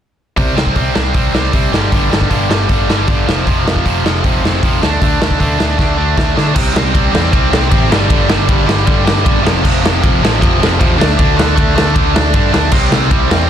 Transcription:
0.37 C2 C3 G3 C4, kick, open hi-hat
0.56 C2 C3 G3 C4, snare
0.66 kick
0.75 C2 C3 G3 C4, kick, open hi-hat
0.94 C2 C3 G3 C4, snare
1.13 C2 C3 G3 C4, kick, open hi-hat
1.34 C2 C3 G3 C4, snare
1.52 C2 C3 G3 C4, kick, open hi-hat
1.72 G1 G2 D3 G3, snare
1.92 G1 G2 D3 G3, kick, open hi-hat
2.11 G1 G2 D3 G3, snare
2.21 kick
2.30 G1 G2 D3 G3, kick, open hi-hat
2.50 G1 G2 D3 G3, snare
2.69 G1 G2 D3 G3, kick, open hi-hat
2.88 G1 G2 D3 G3, snare
3.07 G1 G2 D3 G3, kick, open hi-hat
3.27 F1 F2 C3 F3, snare
3.46 F1 F2 C3 F3, kick, open hi-hat
3.66 F1 F2 C3 F3, snare
3.76 kick
3.85 F1 F2 C3 F3, kick, open hi-hat
4.04 F1 F2 C3 F3, snare
4.23 F1 F2 C3 F3, kick, open hi-hat
4.44 F1 F2 C3 F3, snare
4.62 F1 F2 C3 F3, kick, open hi-hat
4.82 D2 D3 A3 D4, snare
5.01 D2 D3 A3 D4, kick, open hi-hat
5.20 D2 D3 A3 D4, snare
5.30 kick
5.39 D2 D3 A3 D4, kick, open hi-hat
5.58 D2 D3 A3 D4, snare
5.77 D2 D3 A3 D4, kick, snare
5.96 D2 D3 A3 D4
6.17 D2 D3 A3 D4, kick, snare
6.35 D3 A3 D4, snare
6.54 C2 C3 G3 C4, kick, crash
6.74 C2 C3 G3 C4, snare
6.94 C2 C3 G3 C4, kick, ride
7.12 E2 C3 G3 C4, snare
7.32 C2 C3 G3 C4, kick, ride
7.51 C2 C3 G3 C4, snare
7.70 A1 C3 G3 C4, kick, ride
7.90 G1 G2 D3 G3, snare
8.09 G1 G2 D3 G3, kick, ride
8.28 G2 D3 G3, snare
8.48 G1 G2 D3 G3, kick, ride
8.66 G1 G2 D3 G3, snare
8.85 G1 G2 D3 G3, kick, ride
9.04 G2 D3 G3, snare
9.23 G1 G2 D3 G3, kick, ride
9.42 F1 F2 C3 F3
9.47 snare
9.62 F1 F2 C3 F3, kick, crash
9.82 F1 F2 C3 F3, snare
10.01 F1 F2 C3 F3, kick, ride
10.22 A1 F2 C3 F3, snare
10.40 F1 F2 C3 F3, kick, ride
10.59 F1 F2 C3 F3
10.63 snare
10.79 E2 F2 C3 F3, kick, ride
10.98 D2 D3 A3 D4, snare
11.17 D2 D3 A3 D4, kick, ride
11.36 D3 A3 D4, snare
11.55 D2 D3 A3 D4, kick, ride
11.75 D2 D3 A3 D4, snare
11.94 D2 D3 A3 D4, kick, ride
12.14 D3 A3 D4, snare
12.34 G2 D3 A3 D4, kick, ride
12.52 D2 D3 A3 D4, snare
12.71 C2 C3 G3 C4, kick, crash
12.91 C2 C3 G3 C4, snare
13.10 C2 C3 G3 C4, kick, ride
13.30 E2 C3 G3 C4, snare

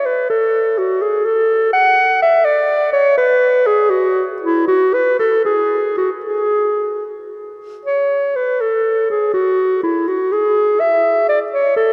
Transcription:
0.06 B4
0.30 A4
0.78 F#4
1.02 G#4
1.25 A4
1.73 F#5
2.22 E5
2.45 D5
2.93 C#5
3.18 B4
3.67 G#4
3.90 F#4
4.42 E4
4.68 F#4
4.94 B4
5.19 A4
5.45 G#4
5.97 F#4
6.25 G#4
7.85 C#5
8.36 B4
8.61 A4
9.10 G#4
9.34 F#4
9.83 E4
10.08 F#4
10.32 G#4
10.80 E5
11.29 D5
11.52 C#5
11.76 A4

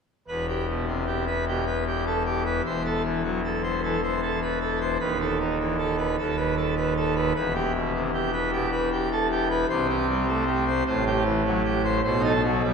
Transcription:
0.28 E1 E2 B4
0.48 G4
0.67 B2
0.87 C3
1.07 G4
1.27 B4
1.48 B2 G4
1.67 B4
1.87 G4
2.06 A4
2.26 G4
2.45 B4
2.66 E1 E2 C5
2.85 A4
3.05 E3
3.24 F#3
3.45 A4
3.63 C5
3.83 E3 A4
4.03 C5
4.22 A4
4.42 B4
4.61 A4
4.81 C5
5.00 D#1 D#2 B4
5.20 A4
5.39 D#3
5.59 E3
5.78 A4
5.98 B4
6.18 D#1 D#2 A4
6.37 B4
6.57 A4
6.77 B4
6.97 A4
7.16 B4
7.35 E1 E2 B4
7.55 G4
7.74 B2
7.94 C3
8.13 G4
8.33 B4
8.53 B2 G4
8.72 B4
8.92 G4
9.12 A4
9.31 G4
9.50 B4
9.69 C2 C3 C5
9.89 G4
10.08 G3
10.28 A3
10.47 G4
10.67 C5
10.87 A1 A2 C5
11.06 G4
11.25 E3
11.46 F#3
11.65 G4
11.84 C5
12.04 B1 B2 C5
12.19 D#4
12.24 A4
12.44 F#3
12.64 G3

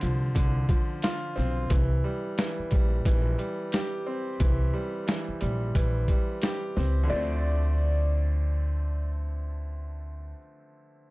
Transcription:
Already playing: D3 F3 C4 F4
0.01 C2 F3, closed hi-hat
0.35 C2 D3, kick, closed hi-hat
0.69 F3, kick, closed hi-hat
1.02 F4, snare, closed hi-hat
1.36 B1 C4, snare
1.70 C2 E3, kick, closed hi-hat
2.04 G3
2.38 E3, snare, closed hi-hat
2.59 muted upright bass stroke
2.71 A#1 G3, kick, closed hi-hat
3.05 A#1 E3, kick, closed hi-hat
3.38 G3, closed hi-hat
3.72 G4, snare, closed hi-hat
4.07 C4
4.40 C2 E3, kick, closed hi-hat
4.74 G3
5.07 E3, snare, closed hi-hat
5.29 muted upright bass stroke
5.41 A#1 G3, closed hi-hat
5.75 A#1 E3, kick, closed hi-hat
6.08 G3, kick, closed hi-hat
6.42 G4, snare, closed hi-hat
6.76 C#2 C4, snare
7.03 D3
7.08 D2 F3 A3 D5
7.16 C4

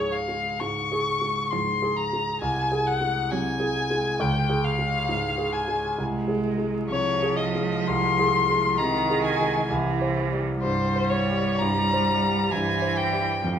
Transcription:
Already playing: C#2 G#2 F3 G#3 G#4 C#5
0.12 F5
0.28 G#3
0.60 G#2 C#6
0.92 G#4
1.22 G#3
1.51 G#2 F3 C6
1.82 G#4
1.96 A#5
2.13 G#3
2.41 C2 G#5
2.72 G#4
2.87 F#5
3.01 G#3
3.31 C3 F#3 G#5
3.60 G#4
3.91 G#3
4.20 C#2 G5
4.49 G#4
4.64 F5
4.79 G#3
5.09 G#2 G#3
5.38 G#4
5.53 G#5
5.68 G#3
5.97 C2 G#3
6.28 G#4
6.58 G#3
6.89 C3 F3 C#5
7.23 G#4
7.36 D#5
7.55 G#3
7.87 C2 C6
8.19 G#4
8.50 G#3
8.78 C3 D#3 A#5
9.10 G#4
9.24 G#5
9.41 G#3
9.70 C2 E3
10.01 C5
10.32 G3
10.62 G2 G3 C5
10.96 C5
11.09 C#5
11.30 G3
11.59 G2 A#5
11.93 C5
12.22 G3
12.50 G2 E3 G#5
12.82 C5
12.97 G5
13.12 G3
13.44 F2 F3

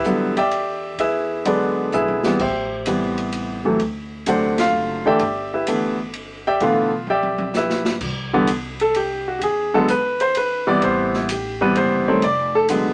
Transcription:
Already playing: E2 E4 G4 B4 E5
0.04 D3 F#3 G3 B3, hi-hat pedal
0.37 G4 D5 E5 G5, ride
0.51 ride
0.98 E2 E4 G#4 B4 E5, kick, ride
1.45 D3 F#3 G#3 B3 D4 G#4 B4 D5, ride
1.92 B1 E4 G#4 B4 E5, hi-hat pedal, high tom
2.08 high tom
2.23 C3 E3 G3 B3, snare
2.39 A1 G4 C5 E5 G5, kick, crash
2.86 C3 E3 G3 B3, hi-hat pedal, ride
3.18 ride
3.32 ride
3.65 C3 E3 F#3 A3
3.79 D2, kick, ride
4.26 C3 D3 F#3 A3 F#4 C5 D5 F#5, hi-hat pedal, ride
4.58 F4 F5, snare, ride
4.74 F#1
5.05 D3 E3 A3 D4 G4 D5 E5 G5
5.19 G1, kick, ride
5.54 E4 G4 B4 E5
5.67 D3 E3 A3 B3, hi-hat pedal, ride
6.13 ride
6.47 G4 D5 E5 G5
6.60 B1 D3 E3 A3 B3 F4 F5, kick, ride
7.07 G4 D5 E5 G5, high tom
7.23 high tom
7.38 high tom
7.54 E4 G4 B4 E5, snare, hi-hat pedal
7.70 snare
7.85 G2, snare
8.01 C2, kick, crash
8.33 D3 E3 G3 B3
8.47 hi-hat pedal, ride
8.80 A4, ride
8.94 G4, ride
9.28 F#4
9.39 E2 G4, kick, ride
9.44 G#4
9.74 D3 F#3 G#3 B3 A4
9.88 B4, hi-hat pedal, ride
10.20 C5, ride
10.35 B4, ride
10.67 C3 E3 G3 B3 D5
10.82 A1 C5, kick, ride
11.14 E4, snare
11.29 G4, hi-hat pedal, ride
11.61 C3 E3 G3 B3 B4
11.75 F#1 C5, ride
12.07 D#3 G3 A3 C4 C#5
12.22 F1 D5, kick, ride
12.55 A4
12.68 D3 F#3 G#3 B3, hi-hat pedal, ride

